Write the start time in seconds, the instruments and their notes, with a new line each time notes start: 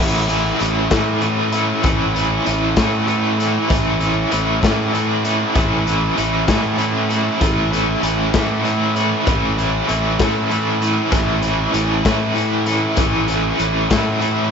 Already playing: overdriven electric guitar E3 A3
0.00 fingered electric bass A1, overdriven electric guitar C#4 E4
0.28 overdriven electric guitar E3 A3 C#4 E4, closed hi-hat
0.59 fingered electric bass A1, overdriven electric guitar E3 A3 C#4 E4, closed hi-hat
0.90 fingered electric bass A2, overdriven electric guitar E3 A3 C#4 E4, kick, snare, closed hi-hat
1.21 overdriven electric guitar E3 A3 C#4 E4, closed hi-hat
1.52 overdriven electric guitar E3 A3 C#4 E4, closed hi-hat
1.83 fingered electric bass A1, overdriven electric guitar E3 A3 C#4 E4, kick, closed hi-hat
2.14 overdriven electric guitar E3 A3 C#4 E4, closed hi-hat
2.45 fingered electric bass A1, overdriven electric guitar E3 A3 C#4 E4, closed hi-hat
2.76 fingered electric bass A2, overdriven electric guitar E3 A3 C#4 E4, kick, snare, closed hi-hat
3.07 overdriven electric guitar E3 A3 C#4 E4, closed hi-hat
3.38 overdriven electric guitar E3 A3 C#4 E4, closed hi-hat
3.69 fingered electric bass A1, overdriven electric guitar E3 A3 C#4 E4, kick, closed hi-hat
4.00 overdriven electric guitar E3 A3 C#4 E4, closed hi-hat
4.31 fingered electric bass A1, overdriven electric guitar E3 A3 C#4 E4, closed hi-hat
4.62 fingered electric bass A2, overdriven electric guitar E3 A3 C#4 E4, kick, snare, closed hi-hat
4.93 overdriven electric guitar E3 A3 C#4 E4, closed hi-hat
5.24 overdriven electric guitar E3 A3 C#4 E4, closed hi-hat
5.55 fingered electric bass A1, overdriven electric guitar E3 A3 C#4 E4, kick, closed hi-hat
5.86 overdriven electric guitar E3 A3 C#4 E4, closed hi-hat
6.16 fingered electric bass A1, overdriven electric guitar E3 A3 C#4 E4, closed hi-hat
6.48 fingered electric bass A2, overdriven electric guitar E3 A3 C#4 E4, kick, snare, closed hi-hat
6.78 overdriven electric guitar E3 A3 C#4 E4, closed hi-hat
7.09 overdriven electric guitar E3 A3 C#4 E4, closed hi-hat
7.41 fingered electric bass A1, overdriven electric guitar E3 A3 C#4 E4, kick, closed hi-hat
7.71 overdriven electric guitar E3 A3 C#4 E4, closed hi-hat
8.02 fingered electric bass A1, overdriven electric guitar E3 A3 C#4 E4, closed hi-hat
8.33 fingered electric bass A2, overdriven electric guitar E3 A3 C#4 E4, kick, snare, closed hi-hat
8.63 overdriven electric guitar E3 A3 C#4 E4, closed hi-hat
8.95 overdriven electric guitar E3 A3 C#4 E4, closed hi-hat
9.26 fingered electric bass A1, overdriven electric guitar E3 A3 C#4 E4, kick, closed hi-hat
9.58 overdriven electric guitar E3 A3 C#4 E4, closed hi-hat
9.87 fingered electric bass A1, overdriven electric guitar E3 A3 C#4 E4, closed hi-hat
10.19 fingered electric bass A2, overdriven electric guitar E3 A3 C#4 E4, kick, snare, closed hi-hat
10.50 overdriven electric guitar E3 A3 C#4 E4, closed hi-hat
10.81 overdriven electric guitar E3 A3 C#4 E4, closed hi-hat
11.11 fingered electric bass A1, overdriven electric guitar E3 A3 C#4 E4, kick, closed hi-hat
11.42 overdriven electric guitar E3 A3 C#4 E4, closed hi-hat
11.72 fingered electric bass A1, overdriven electric guitar E3 A3 C#4 E4, closed hi-hat
12.03 fingered electric bass A2, overdriven electric guitar E3 A3 C#4 E4, kick, snare, closed hi-hat
12.34 overdriven electric guitar E3 A3 C#4 E4, closed hi-hat
12.66 overdriven electric guitar E3 A3 C#4 E4, closed hi-hat
12.96 fingered electric bass A1, overdriven electric guitar E3 A3 C#4 E4, kick, closed hi-hat
13.27 overdriven electric guitar E3 A3 C#4 E4, closed hi-hat
13.58 fingered electric bass A1, overdriven electric guitar E3 A3 C#4 E4, closed hi-hat
13.90 fingered electric bass A2, overdriven electric guitar E3 A3 C#4 E4, kick, snare, closed hi-hat
14.20 overdriven electric guitar E3 A3 C#4 E4, closed hi-hat